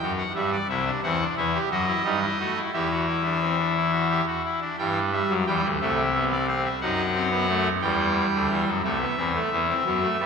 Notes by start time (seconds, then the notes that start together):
Already playing: G5
0.01 F#2 F#3
0.18 F#5
0.35 G2 G3 E5
0.52 D5
0.68 C2 C3 E4 E5
0.86 D4
1.03 E2 E3 C4 F#5
1.20 D4
1.37 E2 E3 E4 E5
1.54 G4
1.70 F#2 F#3 F#4 D#5
1.87 E4
2.04 G2 G3 D#4
2.22 E4
2.39 A3 F#4
2.55 E4
2.73 E2 E3 G4 E5
2.90 F#4
3.07 E4
3.25 D4
3.42 C4
3.59 D4
3.76 E4
3.92 F#4
4.10 G4
4.27 F#4
4.44 E4
4.61 D4
4.78 G2 E3 G3 G5
5.12 G3 E5
5.29 F#2 F#3
5.46 E2 E3 G3 G5
5.63 D2 D3
5.80 C2 C3 A3 E5
6.14 B3
6.31 D5
6.48 C4 C5
6.64 E5
6.81 F#2 F#3 D#4 F#5
7.15 C4
7.31 B3
7.48 A3
7.81 E2 E3 G3 G5
8.33 D2 D3
8.49 E2 E3
8.67 F#2 F#3
8.83 C2 C3 A3 E5
9.00 B3
9.17 E2 E3 C4
9.34 A3
9.51 E2 E3 B3
9.69 C4
9.85 F#2 F#3 B3
10.02 A3
10.19 G2 G3 B3